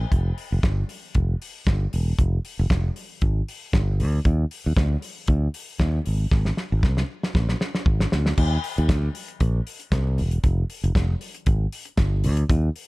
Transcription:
0.12 F1, kick, closed hi-hat
0.38 open hi-hat
0.52 F1
0.63 G1, kick, snare, closed hi-hat
0.89 open hi-hat
1.15 F1, kick, closed hi-hat
1.42 open hi-hat
1.67 G1, kick, snare, closed hi-hat
1.93 E1, open hi-hat
2.19 F1, kick, closed hi-hat
2.45 open hi-hat
2.59 F1
2.70 F1, kick, snare, closed hi-hat
2.96 open hi-hat
3.22 G#1, kick, closed hi-hat
3.48 open hi-hat
3.73 G1, kick, snare, closed hi-hat
4.00 D2, open hi-hat
4.25 D#2, kick, closed hi-hat
4.51 open hi-hat
4.66 D#2
4.77 D2, kick, snare, closed hi-hat
5.02 open hi-hat
5.28 D2, kick, closed hi-hat
5.54 open hi-hat
5.80 D#2, kick, snare, closed hi-hat
6.06 G#1, open hi-hat
6.31 G#1, kick, snare
6.45 snare
6.57 snare
6.72 G#1
6.83 C2, kick, snare
6.97 snare
7.23 snare
7.35 A#1, kick, snare
7.49 snare
7.61 snare
7.75 snare
7.86 G#1, kick
8.00 snare
8.12 D2, snare
8.26 snare
8.38 D#2, kick, crash
8.64 open hi-hat
8.78 D#2, closed hi-hat
8.89 D2, kick, snare, closed hi-hat
9.15 open hi-hat
9.28 closed hi-hat
9.40 A#1, kick, closed hi-hat
9.67 open hi-hat
9.80 closed hi-hat
9.92 C2, kick, snare, closed hi-hat
10.18 E1, open hi-hat
10.31 closed hi-hat
10.44 F1, kick, closed hi-hat
10.70 open hi-hat
10.84 F1, closed hi-hat
10.95 F1, kick, snare, closed hi-hat
11.21 open hi-hat
11.35 closed hi-hat
11.46 G#1, kick, closed hi-hat
11.72 open hi-hat
11.85 closed hi-hat
11.97 G1, kick, snare, closed hi-hat
12.24 D2, open hi-hat
12.37 closed hi-hat
12.49 D#2, kick, closed hi-hat
12.76 open hi-hat

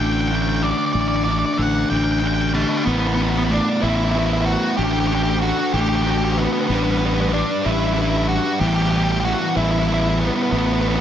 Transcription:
Already playing: D3
0.00 A1 A3 D4
0.06 G5
0.13 G5
0.21 G5
0.28 D3 A3 D4 G5
0.35 G5
0.42 G5
0.49 G5
0.56 G5
0.62 D3 A3 D4 D5
0.71 D5
0.78 D5
0.86 D5
0.93 A1 D3 A3 D4 D5
1.01 D5
1.08 D5
1.16 D5
1.24 D3 A3 D4 D5
1.31 D5
1.39 D5
1.46 D5
1.54 D5 F#5
1.58 A1 D3 A3 D4
1.90 A1 D3 A3 D4 G5
1.97 G5
2.04 G5
2.12 G5
2.20 D3 A3 D4 G5
2.27 G5
2.34 G5
2.41 G5
2.49 G5
2.54 D3 A3 B3 D4 A5
2.62 B3
2.69 B3
2.78 B3
2.84 A1 A3 B3 E4 B4
2.92 B3
3.00 B3
3.07 B3
3.14 B3 B4
3.19 B3 E4
3.29 B3
3.38 B3
3.45 B3
3.50 A3 B3 D4 E4 B4
3.81 A1 A3 B3 E4 B4
3.89 E4
3.97 E4
4.05 E4
4.11 A3 B3 E4
4.16 E4 B4
4.26 E4
4.33 E4
4.42 E4
4.46 F#4
4.77 A1 A3 D4 F#4 G4 A4
4.84 G4
4.93 G4
5.00 G4
5.07 F#4 G4 A4
5.12 D4 G4
5.23 G4
5.30 G4
5.41 A3 D4 F#4 A4
5.73 A1 A3 D4 F#4 G4 A4
5.81 G4
5.89 G4
5.95 G4
6.03 A3 D4 F#4 G4
6.07 G4 A4
6.18 G4
6.25 G4
6.32 G4
6.38 B3
6.45 B3
6.53 B3
6.61 B3
6.67 A1 G3 B3 D4 G4
6.71 B3 B4
6.84 B3
6.91 B3
6.98 B3 B4
7.02 B3 D4 G4
7.14 B3
7.21 B3
7.29 G3 B3 D4
7.33 D4 G4 B4
7.64 A1 G3 D4 E4 G4 B4
7.72 E4
7.80 E4
7.87 E4
7.94 G3 D4 E4 G4
7.98 E4 B4
8.10 E4
8.17 E4
8.24 E4
8.29 F#4
8.60 A1 E3 G3 B3 E4 G4 B4
8.68 G4
8.75 G4
8.82 G4
8.91 E4 G4 B4
8.95 B3 G4
9.04 G4
9.12 G4
9.20 G3 G4
9.24 B3 E4 F#4 B4
9.55 A1 E3 G3 B3 E4 B4
9.64 E4
9.71 E4
9.79 E4
9.88 G3 B3 E4 B4
9.94 E4
10.01 E4
10.09 E4
10.20 B3
10.27 B3
10.35 B3
10.43 B3
10.51 A1 A3 B3 E4 A4
10.58 B3
10.66 B3
10.73 B3
10.81 B3 E4 A4
10.86 B3
10.96 B3

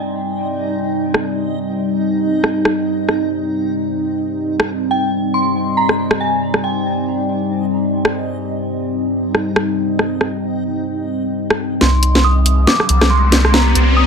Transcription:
Already playing: G3 C4 D#4 D5 G5
1.14 cross-stick
1.45 G5
2.44 cross-stick
2.65 cross-stick
3.09 cross-stick
4.60 cross-stick
4.90 D5 G5
5.34 C6
5.77 A#5
5.89 cross-stick
6.11 cross-stick
6.21 G#5
6.54 cross-stick
6.64 G5
8.05 cross-stick
8.36 G5
9.35 cross-stick
9.56 cross-stick
9.99 cross-stick
10.21 cross-stick
11.50 cross-stick
11.81 C2 C4 D4 G4 C6, snare, riser
12.03 closed hi-hat
12.15 snare
12.24 D#6
12.46 closed hi-hat
12.67 D6, snare
12.80 cross-stick
12.89 C2, closed hi-hat
13.01 cross-stick, snare
13.10 C6
13.32 snare, open hi-hat
13.45 cross-stick
13.54 A#5, snare
13.75 C2, closed hi-hat
13.97 D#6

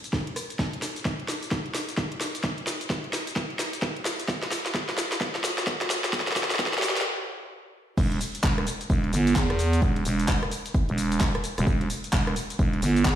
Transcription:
0.04 closed hi-hat, shaker
0.13 kick, snare, shaker
0.27 closed hi-hat
0.36 cross-stick, open hi-hat, shaker
0.50 closed hi-hat, shaker
0.59 kick, snare, shaker
0.73 closed hi-hat
0.82 snare, open hi-hat, shaker
0.96 closed hi-hat, shaker
1.05 kick, snare, shaker
1.20 closed hi-hat
1.28 snare, open hi-hat, shaker
1.43 closed hi-hat, shaker
1.51 kick, snare, shaker
1.66 closed hi-hat
1.74 snare, open hi-hat, shaker
1.89 closed hi-hat, shaker
1.97 kick, snare, shaker
2.12 closed hi-hat
2.21 snare, open hi-hat, shaker
2.35 closed hi-hat, shaker
2.44 kick, snare, shaker
2.58 closed hi-hat
2.67 snare, open hi-hat, shaker
2.81 closed hi-hat, shaker
2.90 kick, snare, shaker
3.04 closed hi-hat
3.13 snare, open hi-hat, shaker
3.27 closed hi-hat, shaker
3.36 kick, snare, shaker
3.50 closed hi-hat
3.59 snare, open hi-hat, shaker
3.73 closed hi-hat, shaker
3.82 kick, snare, shaker
3.96 closed hi-hat
4.05 snare, open hi-hat, shaker
4.20 closed hi-hat, shaker
4.28 kick, snare, shaker
4.43 snare, closed hi-hat
4.51 snare, open hi-hat, shaker
4.66 snare, closed hi-hat, shaker
4.74 kick, snare, shaker
4.89 snare, closed hi-hat
4.98 snare, open hi-hat, shaker
5.12 snare, closed hi-hat, shaker
5.21 kick, snare, shaker
5.35 snare, closed hi-hat
5.44 snare, open hi-hat, shaker
5.58 snare, closed hi-hat, shaker
5.67 kick, snare, shaker
5.81 snare, closed hi-hat
5.90 snare, open hi-hat, shaker
6.04 snare, closed hi-hat, shaker
6.13 kick, snare, shaker
6.20 snare
6.27 snare, closed hi-hat
6.32 snare
6.36 kick, snare, open hi-hat, shaker
6.43 snare
6.50 snare, closed hi-hat, shaker
6.55 snare
6.59 kick, snare, shaker
6.66 snare
6.73 snare, closed hi-hat
6.78 snare
6.82 snare, open hi-hat, shaker
6.89 snare
6.96 snare, closed hi-hat, shaker
7.01 snare
7.98 E1, kick, crash, shaker
8.12 closed hi-hat
8.21 open hi-hat, shaker
8.35 closed hi-hat, shaker
8.44 E1, kick, clap, shaker
8.58 cross-stick, closed hi-hat
8.67 open hi-hat, shaker
8.81 closed hi-hat, shaker
8.90 E1, kick, shaker
9.04 closed hi-hat
9.13 G1, open hi-hat, shaker
9.27 closed hi-hat, shaker
9.36 E2, kick, clap, shaker
9.50 cross-stick, closed hi-hat
9.59 open hi-hat, shaker
9.73 closed hi-hat, shaker
9.82 E1, kick, shaker
9.96 closed hi-hat
10.05 E1, open hi-hat, shaker
10.20 closed hi-hat, shaker
10.28 kick, clap, shaker
10.43 cross-stick, closed hi-hat
10.51 open hi-hat, shaker
10.66 closed hi-hat, shaker
10.74 kick, shaker
10.89 E1, closed hi-hat
10.98 open hi-hat, shaker
11.12 closed hi-hat, shaker
11.21 kick, clap, shaker
11.35 cross-stick, closed hi-hat
11.44 open hi-hat, shaker
11.58 E1, cross-stick, closed hi-hat, shaker
11.67 E1, kick, shaker
11.81 closed hi-hat
11.90 open hi-hat, shaker
12.04 closed hi-hat, shaker
12.13 E1, kick, clap, shaker
12.27 cross-stick, closed hi-hat
12.36 open hi-hat, shaker
12.50 closed hi-hat, shaker
12.59 E1, kick, shaker
12.73 closed hi-hat
12.82 G1, open hi-hat, shaker
12.96 closed hi-hat, shaker
13.05 E2, kick, clap, shaker

